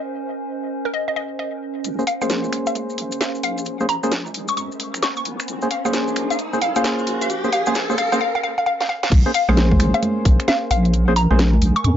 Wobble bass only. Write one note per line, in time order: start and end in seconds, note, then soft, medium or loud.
1.84 1.97 A#1 loud
2.22 2.51 A#1 medium
2.52 2.65 A#1 medium
2.98 3.10 A#1 medium
3.44 4.00 A#1 medium
4.03 4.32 A#1 medium
4.34 4.47 A#1 medium
4.57 4.69 F2 loud
4.94 5.01 A#1 loud
5.25 5.37 A#1 medium
5.48 5.60 A#1 loud
5.85 6.14 A#1 loud
6.16 6.28 A#1 medium
6.62 6.74 A#1 medium
7.07 7.64 A#1 medium
7.67 7.96 A#1 medium
7.98 8.10 A#1 medium
9.12 9.24 A#1 loud
9.49 9.78 A#1 medium
9.80 9.92 A#1 medium
10.25 10.38 A#1 medium
10.71 11.27 A#1 medium
11.31 11.60 A#1 medium
11.62 11.74 A#1 medium
11.84 11.97 F2 loud